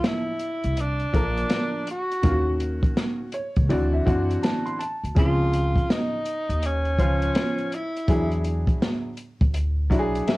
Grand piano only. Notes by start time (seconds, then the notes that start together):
Already playing: F3 A#3 D4 A4
1.13 F3 A#3 D4 A#4
2.22 D#3 A#3 C#4 F4
2.31 F#4
3.34 C#5
3.69 E3 C4 D4 F#4 D5
3.93 E5
4.06 E3 C4 D4 F#4 F#5
4.43 A5
4.66 C6
4.79 A5
5.15 F3 C4 C#4 G#4
6.98 F3 C#4 F4 C5
8.08 F#3 D4 E4 G#4
9.90 F#3 D4 E4 F#4
9.99 G#4
10.27 E5